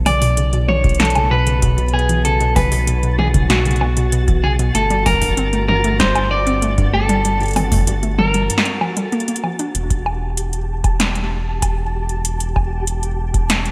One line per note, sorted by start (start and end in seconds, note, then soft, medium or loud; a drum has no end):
0.00 4.72 B1 medium
0.00 9.76 F#4 medium
0.00 9.76 A6 medium
0.06 0.12 C#3 medium
0.06 0.68 D5 loud
0.06 open hi-hat medium
0.06 high tom medium
0.06 high bongo medium
0.22 0.32 B2 loud
0.22 open hi-hat medium
0.37 0.52 C#3 medium
0.37 closed hi-hat medium
0.53 0.67 B2 loud
0.53 closed hi-hat soft
0.68 0.75 B2 medium
0.68 0.99 C#5 loud
0.68 high tom medium
0.84 0.95 B2 medium
0.84 kick loud
0.84 closed hi-hat soft
0.89 closed hi-hat soft
0.95 closed hi-hat soft
1.00 1.06 E3 medium
1.00 1.31 A4 loud
1.00 snare loud
1.00 closed hi-hat medium
1.05 closed hi-hat soft
1.10 closed hi-hat soft
1.15 1.22 C#3 medium
1.15 closed hi-hat soft
1.15 high bongo medium
1.31 1.42 B2 loud
1.31 1.93 B4 loud
1.47 1.62 C#3 medium
1.47 closed hi-hat soft
1.62 1.77 B2 loud
1.62 kick loud
1.62 closed hi-hat medium
1.78 1.84 B2 medium
1.78 closed hi-hat soft
1.88 closed hi-hat soft
1.93 2.04 B2 medium
1.93 2.24 G#4 loud
1.93 high bongo soft
1.99 closed hi-hat soft
2.09 2.15 E3 medium
2.09 closed hi-hat medium
2.25 2.31 C#3 medium
2.25 2.56 A4 loud
2.25 closed hi-hat medium
2.40 2.51 B2 loud
2.40 closed hi-hat soft
2.56 2.71 C#3 medium
2.56 3.18 B4 loud
2.56 kick loud
2.56 open hi-hat medium
2.56 high tom medium
2.56 high bongo medium
2.72 2.86 B2 loud
2.72 open hi-hat medium
2.87 2.94 B2 medium
2.87 closed hi-hat medium
3.03 3.14 B2 medium
3.03 closed hi-hat soft
3.19 3.25 E3 medium
3.19 3.27 G#4 medium
3.19 high tom loud
3.34 3.41 C#3 medium
3.34 kick loud
3.34 closed hi-hat medium
3.50 3.60 B2 loud
3.50 4.46 F#4 loud
3.50 snare loud
3.50 closed hi-hat medium
3.65 3.80 C#3 medium
3.65 closed hi-hat soft
3.71 closed hi-hat soft
3.76 closed hi-hat soft
3.81 3.96 B2 loud
3.81 high bongo medium
3.97 4.03 B2 medium
3.97 closed hi-hat soft
4.12 4.23 B2 medium
4.12 closed hi-hat medium
4.28 4.34 E3 medium
4.28 kick loud
4.28 closed hi-hat soft
4.44 4.50 C#3 medium
4.44 4.52 G#4 medium
4.44 high bongo soft
4.59 4.70 B2 loud
4.59 closed hi-hat medium
4.75 8.50 G1 medium
4.75 4.90 A3 medium
4.75 5.05 A4 loud
4.75 closed hi-hat medium
4.90 5.05 G3 loud
4.90 closed hi-hat soft
5.06 5.12 G3 medium
5.06 5.64 A#4 loud
5.06 kick medium
5.06 open hi-hat medium
5.06 high tom medium
5.06 high bongo medium
5.14 kick medium
5.22 5.32 G2 medium
5.22 kick medium
5.22 open hi-hat medium
5.29 kick medium
5.37 5.44 C4 medium
5.37 closed hi-hat medium
5.53 5.59 A3 medium
5.53 closed hi-hat soft
5.68 5.79 G2 loud
5.68 5.99 A#4 medium
5.68 high tom loud
5.84 5.99 A3 medium
5.84 closed hi-hat soft
6.00 6.14 G3 loud
6.00 6.30 C5 loud
6.00 kick loud
6.00 snare loud
6.00 closed hi-hat medium
6.15 6.22 G3 medium
6.15 closed hi-hat soft
6.15 high bongo medium
6.31 6.42 G2 medium
6.31 6.89 D5 loud
6.47 6.53 C4 medium
6.47 closed hi-hat soft
6.62 6.69 A3 medium
6.62 closed hi-hat medium
6.78 6.88 G2 loud
6.78 kick loud
6.78 closed hi-hat soft
6.94 7.08 A3 medium
6.94 8.18 A4 loud
6.94 high bongo soft
7.09 7.24 G3 loud
7.09 closed hi-hat medium
7.25 7.31 G3 medium
7.25 closed hi-hat medium
7.40 7.51 G2 medium
7.40 closed hi-hat soft
7.43 closed hi-hat soft
7.46 closed hi-hat soft
7.48 closed hi-hat soft
7.51 closed hi-hat soft
7.53 7.62 C4 medium
7.53 closed hi-hat soft
7.53 open hi-hat medium
7.53 high tom medium
7.53 high bongo medium
7.72 7.78 A3 medium
7.72 kick loud
7.72 open hi-hat medium
7.74 kick medium
7.76 kick medium
7.78 kick medium
7.81 kick medium
7.85 7.98 G2 loud
7.85 kick soft
7.85 closed hi-hat medium
8.03 8.18 A3 medium
8.03 closed hi-hat soft
8.19 8.33 G3 loud
8.19 8.98 A#4 medium
8.19 high tom loud
8.34 8.41 G3 medium
8.34 closed hi-hat medium
8.50 8.60 G2 medium
8.50 closed hi-hat medium
8.58 snare loud
8.65 8.72 C4 medium
8.65 closed hi-hat soft
8.81 8.92 F3 medium
8.81 high bongo medium
8.97 9.12 G3 medium
8.97 9.40 A4 medium
8.97 closed hi-hat medium
9.12 9.19 A#3 loud
9.12 closed hi-hat soft
9.20 closed hi-hat soft
9.28 9.39 A#3 medium
9.28 closed hi-hat soft
9.36 closed hi-hat medium
9.44 9.54 F3 medium
9.44 high bongo soft
9.59 9.66 D4 medium
9.59 closed hi-hat medium
9.75 13.72 E1 medium
9.75 13.72 G4 medium
9.75 13.72 A5 medium
9.75 closed hi-hat medium
9.90 kick loud
9.90 closed hi-hat medium
10.06 high bongo medium
10.37 closed hi-hat medium
10.53 closed hi-hat soft
10.84 kick loud
10.84 closed hi-hat medium
10.84 high bongo soft
11.00 snare loud
11.00 closed hi-hat medium
11.15 closed hi-hat soft
11.62 kick medium
11.62 closed hi-hat medium
11.62 high bongo medium
12.09 closed hi-hat soft
12.25 closed hi-hat medium
12.40 closed hi-hat medium
12.56 kick loud
12.56 high bongo soft
12.87 closed hi-hat medium
13.03 closed hi-hat soft
13.34 kick loud
13.34 closed hi-hat medium
13.50 snare loud
13.50 closed hi-hat medium
13.65 closed hi-hat soft